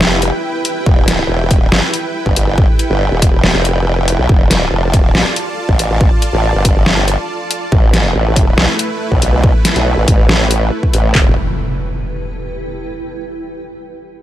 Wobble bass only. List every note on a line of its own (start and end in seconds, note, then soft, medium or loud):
0.00 0.31 F1 medium
0.86 1.28 E1 loud
1.29 1.70 E1 medium
1.72 1.81 G1 medium
2.26 2.67 G1 loud
2.90 3.10 G1 loud
3.12 3.53 E1 loud
3.55 4.17 F1 loud
4.19 4.28 B1 loud
4.29 4.70 F1 medium
4.72 5.13 F1 medium
5.15 5.24 A1 loud
5.69 6.10 A1 loud
6.33 6.53 A1 medium
6.55 7.17 G1 loud
7.72 8.13 A1 loud
8.15 8.56 A1 medium
8.58 8.67 B1 medium
9.12 9.53 B1 loud
9.76 9.96 B1 loud
9.97 10.06 A1 loud
10.08 10.70 A1 loud
10.94 11.13 A1 medium
11.15 11.35 E1 loud